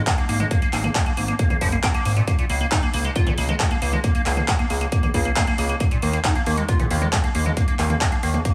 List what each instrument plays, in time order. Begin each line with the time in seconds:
0.07 acid bass G#3, kick, clap, closed hi-hat
0.18 acid bass A#3, closed hi-hat
0.29 analog synth bass G#1, acid bass A#3, open hi-hat
0.40 acid bass G#3, closed hi-hat, mid tom
0.51 acid bass A#3, kick, closed hi-hat
0.62 acid bass A#3, closed hi-hat
0.73 analog synth bass G#1, acid bass A#3, clap, open hi-hat
0.84 acid bass A#3, closed hi-hat, mid tom
0.95 acid bass G#3, kick, clap, closed hi-hat
1.06 acid bass A#3, closed hi-hat
1.17 analog synth bass G#1, acid bass A#3, open hi-hat
1.28 acid bass A#3, closed hi-hat
1.39 acid bass A#3, kick, closed hi-hat
1.50 acid bass A#3, closed hi-hat, mid tom
1.61 analog synth bass F#1, acid bass F3, kick, open hi-hat
1.72 acid bass A#3, closed hi-hat
1.83 acid bass C4, kick, clap, closed hi-hat
1.94 acid bass A#3, closed hi-hat
2.05 analog synth bass G#1, acid bass A#3, open hi-hat
2.17 acid bass A#2, closed hi-hat
2.28 acid bass A#3, kick, closed hi-hat
2.39 acid bass A#2, closed hi-hat
2.49 analog synth bass C#2, acid bass A#3, open hi-hat
2.61 acid bass A#3, closed hi-hat
2.72 acid bass D#4, kick, clap, closed hi-hat
2.83 acid bass A#3, closed hi-hat
2.94 analog synth bass C#2, acid bass A#3, open hi-hat
3.05 acid bass G#3, closed hi-hat
3.16 acid bass F4, kick, closed hi-hat
3.27 acid bass A#2, closed hi-hat, mid tom
3.38 analog synth bass C#2, acid bass A#3, open hi-hat
3.49 acid bass G#3, closed hi-hat, mid tom
3.60 acid bass G#3, kick, clap, closed hi-hat
3.71 acid bass A#3, closed hi-hat
3.82 analog synth bass C#2, acid bass A#3, open hi-hat
3.93 acid bass G#3, closed hi-hat, mid tom
4.04 acid bass A#3, kick, closed hi-hat
4.15 acid bass A#3, closed hi-hat
4.26 analog synth bass C#2, acid bass A#3, clap, open hi-hat
4.37 acid bass A#3, closed hi-hat, mid tom
4.48 acid bass G#3, kick, clap, closed hi-hat
4.59 acid bass A#3, closed hi-hat
4.70 analog synth bass C#2, acid bass A#3, open hi-hat
4.81 acid bass A#3, closed hi-hat
4.92 acid bass A#3, kick, closed hi-hat
5.03 acid bass A#3, closed hi-hat, mid tom
5.14 analog synth bass C#2, acid bass A#3, kick, open hi-hat
5.25 acid bass A#3, closed hi-hat
5.36 acid bass A#3, kick, clap, closed hi-hat
5.47 acid bass A#3, closed hi-hat
5.58 analog synth bass C#2, acid bass A#3, open hi-hat
5.69 acid bass A#3, closed hi-hat
5.80 acid bass A#3, kick, closed hi-hat
5.91 acid bass A#2, closed hi-hat
6.02 analog synth bass D#2, acid bass A#3, open hi-hat
6.13 acid bass A#3, closed hi-hat
6.24 acid bass D#4, kick, clap, closed hi-hat
6.35 acid bass A#3, closed hi-hat
6.46 analog synth bass D#2, acid bass A#3, open hi-hat
6.57 acid bass G#3, closed hi-hat
6.69 acid bass F4, kick, closed hi-hat
6.80 acid bass A#2, closed hi-hat, mid tom
6.91 analog synth bass D#2, acid bass A#3, open hi-hat
7.02 acid bass G#3, closed hi-hat, mid tom
7.13 acid bass G#3, kick, clap, closed hi-hat
7.24 acid bass A#3, closed hi-hat
7.35 analog synth bass D#2, acid bass A#3, open hi-hat
7.46 acid bass G#3, closed hi-hat, mid tom
7.57 acid bass A#3, kick, closed hi-hat
7.68 acid bass A#3, closed hi-hat
7.79 analog synth bass D#2, acid bass A#3, clap, open hi-hat
7.90 acid bass A#3, closed hi-hat, mid tom
8.01 acid bass G#3, kick, clap, closed hi-hat
8.12 acid bass A#3, closed hi-hat
8.23 analog synth bass D#2, acid bass A#3, open hi-hat
8.34 acid bass A#3, closed hi-hat, mid tom
8.45 acid bass A#3, kick, closed hi-hat